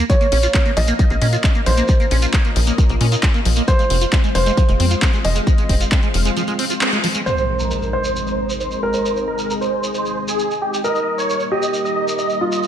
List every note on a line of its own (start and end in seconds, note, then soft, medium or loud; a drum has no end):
0.10 0.16 F3 medium
0.10 3.64 A#3 medium
0.10 3.64 C#4 medium
0.10 7.22 F4 medium
0.10 3.64 A#4 medium
0.10 0.68 C#5 medium
0.10 1.87 F5 medium
0.10 kick loud
0.10 closed hi-hat medium
0.10 shekere medium
0.21 0.27 A#3 medium
0.21 closed hi-hat soft
0.21 shekere soft
0.32 0.47 A#1 loud
0.32 0.38 C#4 medium
0.32 open hi-hat loud
0.43 0.47 F4 medium
0.43 closed hi-hat soft
0.43 shekere medium
0.54 0.63 C#4 medium
0.54 kick loud
0.54 clap loud
0.54 closed hi-hat soft
0.54 shekere medium
0.66 0.72 A#3 loud
0.66 closed hi-hat soft
0.66 shekere soft
0.77 0.92 A#1 loud
0.77 0.80 F3 medium
0.77 1.57 D#5 medium
0.77 open hi-hat loud
0.87 0.94 A#3 medium
0.87 closed hi-hat soft
0.87 shekere medium
0.99 1.05 F3 medium
0.99 kick loud
0.99 closed hi-hat soft
0.99 shekere medium
1.10 1.18 A#1 loud
1.10 1.16 A#3 medium
1.10 closed hi-hat soft
1.10 shekere soft
1.22 1.37 A#2 medium
1.22 1.28 C#4 medium
1.22 open hi-hat loud
1.33 1.36 F4 medium
1.33 closed hi-hat soft
1.33 shekere medium
1.44 1.53 C#4 medium
1.44 kick loud
1.44 clap loud
1.44 closed hi-hat soft
1.44 shekere medium
1.54 1.61 A#3 loud
1.54 closed hi-hat soft
1.54 shekere soft
1.66 1.82 A#1 medium
1.66 1.70 F3 medium
1.66 2.25 C5 medium
1.66 open hi-hat loud
1.77 1.84 A#3 medium
1.77 closed hi-hat soft
1.77 shekere medium
1.88 1.95 F3 medium
1.88 3.66 D#5 medium
1.88 kick loud
1.88 closed hi-hat medium
1.88 shekere medium
2.00 2.06 A#3 medium
2.00 closed hi-hat soft
2.00 shekere soft
2.11 2.26 A#1 loud
2.11 2.17 C#4 medium
2.11 open hi-hat loud
2.22 2.26 F4 medium
2.22 closed hi-hat soft
2.22 shekere medium
2.33 2.42 C#4 medium
2.33 kick loud
2.33 clap loud
2.33 closed hi-hat soft
2.33 shekere medium
2.45 2.51 A#3 loud
2.45 closed hi-hat soft
2.45 shekere soft
2.56 2.71 A#1 loud
2.56 2.59 F3 medium
2.56 open hi-hat loud
2.67 2.73 A#3 medium
2.67 closed hi-hat medium
2.67 shekere medium
2.78 2.84 F3 medium
2.78 kick loud
2.78 closed hi-hat medium
2.78 shekere medium
2.90 2.97 A#1 loud
2.90 2.95 A#3 medium
2.90 closed hi-hat soft
2.90 shekere soft
3.01 3.16 A#2 medium
3.01 3.07 C#4 medium
3.01 open hi-hat loud
3.12 3.15 F4 medium
3.12 closed hi-hat medium
3.12 shekere medium
3.22 3.32 C#4 medium
3.22 kick loud
3.22 clap loud
3.22 closed hi-hat medium
3.22 shekere medium
3.34 3.40 A#3 loud
3.34 closed hi-hat soft
3.34 shekere soft
3.45 3.61 A#1 medium
3.45 3.49 F3 medium
3.45 open hi-hat loud
3.56 3.63 A#3 medium
3.56 closed hi-hat medium
3.56 shekere medium
3.68 3.74 F3 medium
3.68 7.22 G#3 medium
3.68 7.22 C4 medium
3.68 7.22 C5 medium
3.68 4.26 C5 loud
3.68 7.22 F5 medium
3.68 kick loud
3.68 closed hi-hat medium
3.68 shekere medium
3.79 3.85 G#3 medium
3.79 closed hi-hat soft
3.79 shekere soft
3.90 4.05 F1 loud
3.90 3.96 C4 medium
3.90 open hi-hat loud
4.01 4.05 F4 medium
4.01 closed hi-hat medium
4.01 shekere medium
4.12 4.21 C4 medium
4.12 kick loud
4.12 clap loud
4.12 closed hi-hat soft
4.12 shekere medium
4.24 4.30 G#3 loud
4.24 closed hi-hat soft
4.24 shekere soft
4.35 4.50 F1 loud
4.35 4.39 F3 medium
4.35 5.16 C5 medium
4.35 open hi-hat loud
4.46 4.52 G#3 medium
4.46 closed hi-hat medium
4.46 shekere medium
4.57 4.63 F3 medium
4.57 kick loud
4.57 closed hi-hat medium
4.57 shekere medium
4.68 4.76 F1 loud
4.68 4.74 G#3 medium
4.68 closed hi-hat soft
4.68 shekere soft
4.80 4.95 F2 medium
4.80 4.86 C4 medium
4.80 open hi-hat loud
4.90 4.95 F4 medium
4.90 closed hi-hat medium
4.90 shekere medium
5.02 5.11 C4 medium
5.02 kick loud
5.02 clap loud
5.02 closed hi-hat medium
5.02 shekere medium
5.13 5.19 G#3 loud
5.13 closed hi-hat soft
5.13 shekere soft
5.24 5.40 F1 medium
5.24 5.28 F3 medium
5.24 5.83 D#5 medium
5.24 open hi-hat loud
5.36 5.42 G#3 medium
5.36 closed hi-hat medium
5.36 shekere medium
5.47 5.53 F3 medium
5.47 kick loud
5.47 closed hi-hat medium
5.47 shekere medium
5.58 5.64 G#3 medium
5.58 closed hi-hat soft
5.58 shekere soft
5.69 5.85 F1 loud
5.69 5.75 C4 medium
5.69 kick medium
5.69 open hi-hat loud
5.80 5.84 F4 medium
5.80 closed hi-hat medium
5.80 shekere medium
5.91 6.01 C4 medium
5.91 kick loud
5.91 clap loud
5.91 closed hi-hat medium
5.91 shekere medium
6.02 6.09 G#3 loud
6.02 closed hi-hat soft
6.02 shekere soft
6.14 6.29 F1 loud
6.14 6.18 F3 medium
6.14 open hi-hat loud
6.25 6.31 G#3 medium
6.25 closed hi-hat medium
6.25 shekere medium
6.37 6.42 F3 medium
6.37 closed hi-hat medium
6.37 shekere medium
6.47 6.54 G#3 medium
6.47 closed hi-hat soft
6.47 shekere soft
6.59 6.65 C4 medium
6.59 open hi-hat loud
6.70 6.74 F4 medium
6.70 closed hi-hat medium
6.70 shekere medium
6.81 6.90 C4 medium
6.81 clap loud
6.81 closed hi-hat medium
6.81 shekere medium
6.92 6.98 G#3 loud
6.92 closed hi-hat soft
6.92 shekere soft
7.04 7.07 F3 medium
7.04 open hi-hat loud
7.14 7.21 G#3 medium
7.14 closed hi-hat medium
7.14 shekere medium
7.26 10.81 G#3 medium
7.26 10.81 C4 medium
7.26 12.67 D#4 medium
7.26 9.03 A#4 medium
7.26 7.84 C5 medium
7.26 7.51 C5 loud
7.26 12.59 D#5 medium
7.26 impact medium
7.26 shekere medium
7.37 shekere soft
7.59 7.84 A#4 medium
7.59 shekere medium
7.71 shekere medium
7.82 shekere soft
7.93 8.18 C5 medium
7.93 8.74 C5 medium
8.04 shekere medium
8.16 shekere medium
8.27 8.51 C5 medium
8.27 shekere soft
8.50 shekere medium
8.60 8.85 C5 loud
8.60 shekere medium
8.71 shekere soft
8.83 9.41 A#4 medium
8.94 9.18 C5 medium
8.94 shekere medium
9.05 10.82 G#4 medium
9.05 shekere medium
9.17 shekere soft
9.28 9.52 A#4 medium
9.38 shekere medium
9.50 shekere medium
9.61 9.86 C5 medium
9.61 shekere soft
9.84 shekere medium
9.94 10.19 C5 medium
9.94 shekere medium
10.06 shekere soft
10.28 10.53 G#4 medium
10.28 shekere medium
10.39 shekere medium
10.51 shekere soft
10.62 10.78 G4 medium
10.74 shekere medium
10.84 12.67 G3 medium
10.84 12.67 A#3 medium
10.84 12.67 A#4 medium
10.84 11.42 A#4 medium
10.84 11.09 D#5 loud
10.84 shekere medium
10.96 shekere soft
11.18 11.42 C#5 medium
11.18 shekere medium
11.30 shekere medium
11.40 shekere soft
11.51 12.32 G4 medium
11.51 11.76 D#5 medium
11.62 shekere medium
11.74 shekere medium
11.85 12.10 D#5 medium
11.85 shekere soft
12.08 shekere medium
12.19 12.43 D#5 loud
12.19 shekere medium
12.30 shekere soft
12.41 12.67 F4 medium
12.52 12.67 D#5 medium
12.52 shekere medium
12.63 12.67 F5 medium
12.63 shekere medium